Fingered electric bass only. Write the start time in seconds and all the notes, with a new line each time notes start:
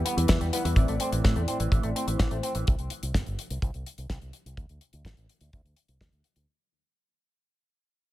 0.17 E2
0.29 E2
0.41 E2
0.65 E2
0.76 A1
0.88 A1
1.12 A1
1.25 A2
1.36 E2
1.60 A1
1.72 A1
1.84 A1
2.07 A1
2.20 A1
2.31 A1
2.55 A1
2.68 C2
2.79 C2
3.03 C2
3.14 G1
3.27 G1
3.50 C2
3.62 C2
3.74 C2
3.98 C2
4.10 C2
4.22 C2
4.46 C2
4.57 D2
4.70 D2
4.93 D2
5.05 A1
5.17 A1
5.41 D2
5.53 D2
5.65 D2
5.88 C2
6.01 D2
6.12 D2
6.36 D2